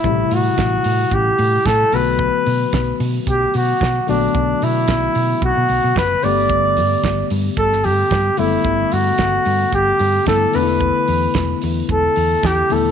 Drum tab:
HH |x-o-x-o-x-o-x-o-|x-o-x-o-x-o-x-o-|x-o-x-o-x-o-x-o-|x-o-x-o-x-o-x-o-|
SD |----o-------o---|----o-------o---|----o-------o---|----o----o--o---|
BD |o---o---o---o---|o---o---o---o---|o---o---o---o---|o---o---o---o---|

HH |x-o-x-o-x-o-x-o-|x-o-x-o-x-o-x-o-|
SD |----o-------o---|----o-------o---|
BD |o---o---o---o---|o---o---o---o---|